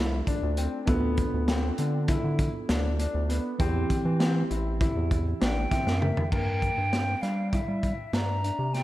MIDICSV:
0, 0, Header, 1, 6, 480
1, 0, Start_track
1, 0, Tempo, 604839
1, 695, Time_signature, 9, 3, 24, 8
1, 7010, End_track
2, 0, Start_track
2, 0, Title_t, "Flute"
2, 0, Program_c, 0, 73
2, 4299, Note_on_c, 0, 79, 83
2, 4764, Note_on_c, 0, 76, 78
2, 4776, Note_off_c, 0, 79, 0
2, 5011, Note_on_c, 0, 79, 94
2, 5023, Note_off_c, 0, 76, 0
2, 5727, Note_on_c, 0, 77, 77
2, 5739, Note_off_c, 0, 79, 0
2, 5972, Note_off_c, 0, 77, 0
2, 5979, Note_on_c, 0, 76, 76
2, 6460, Note_on_c, 0, 82, 82
2, 6472, Note_off_c, 0, 76, 0
2, 6936, Note_on_c, 0, 79, 82
2, 6948, Note_off_c, 0, 82, 0
2, 7010, Note_off_c, 0, 79, 0
2, 7010, End_track
3, 0, Start_track
3, 0, Title_t, "Tine electric piano"
3, 0, Program_c, 1, 4
3, 0, Note_on_c, 1, 57, 67
3, 0, Note_on_c, 1, 62, 64
3, 0, Note_on_c, 1, 65, 58
3, 0, Note_on_c, 1, 69, 69
3, 657, Note_off_c, 1, 57, 0
3, 661, Note_off_c, 1, 62, 0
3, 665, Note_off_c, 1, 65, 0
3, 669, Note_off_c, 1, 69, 0
3, 678, Note_on_c, 1, 59, 70
3, 685, Note_on_c, 1, 62, 70
3, 693, Note_on_c, 1, 65, 69
3, 702, Note_on_c, 1, 69, 80
3, 2814, Note_off_c, 1, 59, 0
3, 2818, Note_off_c, 1, 62, 0
3, 2822, Note_off_c, 1, 65, 0
3, 2826, Note_off_c, 1, 69, 0
3, 2846, Note_on_c, 1, 52, 70
3, 2851, Note_on_c, 1, 60, 67
3, 2858, Note_on_c, 1, 64, 68
3, 2868, Note_on_c, 1, 67, 74
3, 4533, Note_on_c, 1, 76, 61
3, 4757, Note_off_c, 1, 76, 0
3, 4774, Note_on_c, 1, 79, 67
3, 4978, Note_off_c, 1, 52, 0
3, 4981, Note_off_c, 1, 60, 0
3, 4984, Note_off_c, 1, 64, 0
3, 4990, Note_off_c, 1, 67, 0
3, 4998, Note_off_c, 1, 79, 0
3, 7010, End_track
4, 0, Start_track
4, 0, Title_t, "Grand piano"
4, 0, Program_c, 2, 0
4, 0, Note_on_c, 2, 64, 77
4, 136, Note_off_c, 2, 64, 0
4, 215, Note_on_c, 2, 62, 77
4, 376, Note_off_c, 2, 62, 0
4, 457, Note_on_c, 2, 60, 72
4, 617, Note_off_c, 2, 60, 0
4, 701, Note_on_c, 2, 59, 96
4, 1022, Note_off_c, 2, 59, 0
4, 1181, Note_on_c, 2, 60, 81
4, 1340, Note_off_c, 2, 60, 0
4, 1419, Note_on_c, 2, 62, 64
4, 1579, Note_off_c, 2, 62, 0
4, 1656, Note_on_c, 2, 64, 87
4, 1978, Note_off_c, 2, 64, 0
4, 2136, Note_on_c, 2, 62, 68
4, 2297, Note_off_c, 2, 62, 0
4, 2376, Note_on_c, 2, 62, 66
4, 2537, Note_off_c, 2, 62, 0
4, 2611, Note_on_c, 2, 59, 72
4, 2774, Note_off_c, 2, 59, 0
4, 2853, Note_on_c, 2, 60, 95
4, 3176, Note_off_c, 2, 60, 0
4, 3330, Note_on_c, 2, 60, 82
4, 3493, Note_off_c, 2, 60, 0
4, 3570, Note_on_c, 2, 64, 65
4, 3733, Note_off_c, 2, 64, 0
4, 3811, Note_on_c, 2, 64, 80
4, 4135, Note_off_c, 2, 64, 0
4, 4290, Note_on_c, 2, 62, 68
4, 4453, Note_off_c, 2, 62, 0
4, 4531, Note_on_c, 2, 60, 67
4, 4694, Note_off_c, 2, 60, 0
4, 4775, Note_on_c, 2, 58, 67
4, 4936, Note_off_c, 2, 58, 0
4, 5020, Note_on_c, 2, 58, 82
4, 5341, Note_off_c, 2, 58, 0
4, 5496, Note_on_c, 2, 60, 74
4, 5657, Note_off_c, 2, 60, 0
4, 5734, Note_on_c, 2, 62, 57
4, 5896, Note_off_c, 2, 62, 0
4, 5974, Note_on_c, 2, 64, 64
4, 6298, Note_off_c, 2, 64, 0
4, 6457, Note_on_c, 2, 62, 67
4, 6618, Note_off_c, 2, 62, 0
4, 6696, Note_on_c, 2, 62, 60
4, 6858, Note_off_c, 2, 62, 0
4, 6936, Note_on_c, 2, 60, 60
4, 7010, Note_off_c, 2, 60, 0
4, 7010, End_track
5, 0, Start_track
5, 0, Title_t, "Analog synth bass"
5, 0, Program_c, 3, 38
5, 0, Note_on_c, 3, 36, 97
5, 176, Note_off_c, 3, 36, 0
5, 340, Note_on_c, 3, 38, 97
5, 538, Note_off_c, 3, 38, 0
5, 696, Note_on_c, 3, 38, 82
5, 995, Note_off_c, 3, 38, 0
5, 1062, Note_on_c, 3, 38, 82
5, 1359, Note_off_c, 3, 38, 0
5, 1418, Note_on_c, 3, 50, 86
5, 1717, Note_off_c, 3, 50, 0
5, 1778, Note_on_c, 3, 50, 78
5, 1976, Note_off_c, 3, 50, 0
5, 2139, Note_on_c, 3, 38, 93
5, 2437, Note_off_c, 3, 38, 0
5, 2496, Note_on_c, 3, 38, 89
5, 2695, Note_off_c, 3, 38, 0
5, 2855, Note_on_c, 3, 40, 102
5, 3054, Note_off_c, 3, 40, 0
5, 3216, Note_on_c, 3, 52, 90
5, 3515, Note_off_c, 3, 52, 0
5, 3578, Note_on_c, 3, 33, 87
5, 3876, Note_off_c, 3, 33, 0
5, 3939, Note_on_c, 3, 40, 81
5, 4237, Note_off_c, 3, 40, 0
5, 4301, Note_on_c, 3, 33, 91
5, 4498, Note_off_c, 3, 33, 0
5, 4659, Note_on_c, 3, 42, 90
5, 4857, Note_off_c, 3, 42, 0
5, 5017, Note_on_c, 3, 43, 88
5, 5316, Note_off_c, 3, 43, 0
5, 5378, Note_on_c, 3, 43, 82
5, 5677, Note_off_c, 3, 43, 0
5, 5736, Note_on_c, 3, 55, 88
5, 6036, Note_off_c, 3, 55, 0
5, 6096, Note_on_c, 3, 55, 71
5, 6296, Note_off_c, 3, 55, 0
5, 6453, Note_on_c, 3, 43, 88
5, 6755, Note_off_c, 3, 43, 0
5, 6816, Note_on_c, 3, 48, 91
5, 7010, Note_off_c, 3, 48, 0
5, 7010, End_track
6, 0, Start_track
6, 0, Title_t, "Drums"
6, 215, Note_on_c, 9, 36, 68
6, 215, Note_on_c, 9, 42, 58
6, 294, Note_off_c, 9, 42, 0
6, 295, Note_off_c, 9, 36, 0
6, 454, Note_on_c, 9, 42, 52
6, 533, Note_off_c, 9, 42, 0
6, 692, Note_on_c, 9, 42, 67
6, 695, Note_on_c, 9, 36, 108
6, 772, Note_off_c, 9, 42, 0
6, 774, Note_off_c, 9, 36, 0
6, 932, Note_on_c, 9, 42, 56
6, 935, Note_on_c, 9, 36, 71
6, 1012, Note_off_c, 9, 42, 0
6, 1014, Note_off_c, 9, 36, 0
6, 1174, Note_on_c, 9, 38, 87
6, 1174, Note_on_c, 9, 42, 66
6, 1253, Note_off_c, 9, 38, 0
6, 1253, Note_off_c, 9, 42, 0
6, 1412, Note_on_c, 9, 42, 57
6, 1492, Note_off_c, 9, 42, 0
6, 1652, Note_on_c, 9, 42, 81
6, 1655, Note_on_c, 9, 36, 93
6, 1731, Note_off_c, 9, 42, 0
6, 1734, Note_off_c, 9, 36, 0
6, 1895, Note_on_c, 9, 42, 60
6, 1896, Note_on_c, 9, 36, 78
6, 1974, Note_off_c, 9, 42, 0
6, 1975, Note_off_c, 9, 36, 0
6, 2135, Note_on_c, 9, 38, 101
6, 2135, Note_on_c, 9, 42, 79
6, 2214, Note_off_c, 9, 38, 0
6, 2214, Note_off_c, 9, 42, 0
6, 2376, Note_on_c, 9, 42, 58
6, 2456, Note_off_c, 9, 42, 0
6, 2617, Note_on_c, 9, 42, 57
6, 2696, Note_off_c, 9, 42, 0
6, 2854, Note_on_c, 9, 42, 69
6, 2855, Note_on_c, 9, 36, 102
6, 2933, Note_off_c, 9, 42, 0
6, 2935, Note_off_c, 9, 36, 0
6, 3095, Note_on_c, 9, 36, 72
6, 3096, Note_on_c, 9, 42, 62
6, 3175, Note_off_c, 9, 36, 0
6, 3175, Note_off_c, 9, 42, 0
6, 3335, Note_on_c, 9, 38, 92
6, 3335, Note_on_c, 9, 42, 72
6, 3414, Note_off_c, 9, 38, 0
6, 3414, Note_off_c, 9, 42, 0
6, 3577, Note_on_c, 9, 42, 48
6, 3657, Note_off_c, 9, 42, 0
6, 3816, Note_on_c, 9, 36, 95
6, 3820, Note_on_c, 9, 42, 70
6, 3895, Note_off_c, 9, 36, 0
6, 3899, Note_off_c, 9, 42, 0
6, 4056, Note_on_c, 9, 36, 73
6, 4058, Note_on_c, 9, 42, 54
6, 4135, Note_off_c, 9, 36, 0
6, 4137, Note_off_c, 9, 42, 0
6, 4298, Note_on_c, 9, 38, 104
6, 4298, Note_on_c, 9, 42, 70
6, 4377, Note_off_c, 9, 38, 0
6, 4377, Note_off_c, 9, 42, 0
6, 4535, Note_on_c, 9, 36, 74
6, 4537, Note_on_c, 9, 38, 33
6, 4537, Note_on_c, 9, 42, 55
6, 4615, Note_off_c, 9, 36, 0
6, 4616, Note_off_c, 9, 38, 0
6, 4616, Note_off_c, 9, 42, 0
6, 4658, Note_on_c, 9, 38, 55
6, 4737, Note_off_c, 9, 38, 0
6, 4778, Note_on_c, 9, 47, 63
6, 4858, Note_off_c, 9, 47, 0
6, 4899, Note_on_c, 9, 43, 88
6, 4978, Note_off_c, 9, 43, 0
6, 5016, Note_on_c, 9, 36, 88
6, 5019, Note_on_c, 9, 49, 76
6, 5095, Note_off_c, 9, 36, 0
6, 5098, Note_off_c, 9, 49, 0
6, 5256, Note_on_c, 9, 36, 64
6, 5258, Note_on_c, 9, 42, 53
6, 5335, Note_off_c, 9, 36, 0
6, 5337, Note_off_c, 9, 42, 0
6, 5499, Note_on_c, 9, 38, 84
6, 5499, Note_on_c, 9, 42, 65
6, 5578, Note_off_c, 9, 38, 0
6, 5578, Note_off_c, 9, 42, 0
6, 5737, Note_on_c, 9, 38, 22
6, 5737, Note_on_c, 9, 42, 46
6, 5816, Note_off_c, 9, 38, 0
6, 5816, Note_off_c, 9, 42, 0
6, 5974, Note_on_c, 9, 42, 68
6, 5975, Note_on_c, 9, 36, 85
6, 6053, Note_off_c, 9, 42, 0
6, 6054, Note_off_c, 9, 36, 0
6, 6215, Note_on_c, 9, 36, 67
6, 6217, Note_on_c, 9, 42, 53
6, 6295, Note_off_c, 9, 36, 0
6, 6296, Note_off_c, 9, 42, 0
6, 6455, Note_on_c, 9, 38, 86
6, 6455, Note_on_c, 9, 42, 66
6, 6534, Note_off_c, 9, 38, 0
6, 6534, Note_off_c, 9, 42, 0
6, 6700, Note_on_c, 9, 42, 55
6, 6780, Note_off_c, 9, 42, 0
6, 6940, Note_on_c, 9, 38, 28
6, 6940, Note_on_c, 9, 42, 53
6, 7010, Note_off_c, 9, 38, 0
6, 7010, Note_off_c, 9, 42, 0
6, 7010, End_track
0, 0, End_of_file